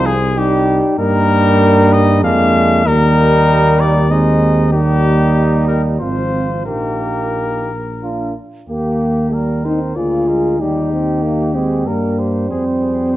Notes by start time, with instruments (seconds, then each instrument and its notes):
Already playing: tuba C2, trombone F3, french horn C4
0.06 trumpet G#4
0.36 trombone G3, french horn D#4, trumpet G4
0.98 tuba G2, trombone G3, french horn A#3, trumpet D#4 A#4
1.93 trumpet D#5
2.23 tuba F2, trombone G#3, french horn A#3, trumpet D4 F5
2.85 tuba D#2, trombone G3, french horn A#3, trumpet D#4 A#4
3.80 trumpet D5
4.10 trombone G#3, french horn C4, trumpet D#4 D#5
4.73 trombone G3, french horn A#3, trumpet D#4 G4
5.68 trumpet A#4
6.00 tuba G#1, trombone F3, french horn C4, trumpet F4 C5
6.66 tuba A#1, trombone A#3, french horn D#4, trumpet G4 A#4
8.03 trombone A#3, french horn D4, trumpet F4
8.69 tuba D#2, french horn A#3, trombone A#3, trumpet G4
9.33 trombone G3, trumpet A#4
9.64 trombone C4, french horn D#4, trumpet C5
9.96 tuba D2, trombone A#3, french horn F4, trumpet G#4 D5
10.27 trombone G#3, trumpet A#4
10.59 tuba D#2, trombone G3, french horn D#4, trumpet G4
10.92 trombone C4
11.22 trombone A#3, trumpet G4
11.54 trombone G#3, french horn C4, trumpet G#4
11.86 tuba G2, trombone G3, french horn A#3, trumpet A#4
12.19 trumpet G4 C5
12.49 tuba F2, french horn C4, trumpet G#4 C5
12.81 trumpet G#4
13.12 trumpet C5